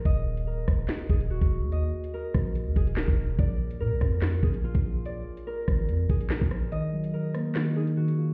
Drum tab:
HH |x--x--x-x--x-x--|x--x--x-x-xx----|x--x--x-x--x-x--|x--x--x-x-xx----|
CP |--------x-------|------------x---|--------x-------|------------x---|
SD |------r-o-------|------r-----o---|------r-o-------|------r-----o-r-|
BD |o-----o---o--o--|------o---o--o--|o-----o---o--o--|------o---o--o--|

HH |x--x--x-x--x-x--|
CP |--------x-------|
SD |------r-o-------|
BD |----------------|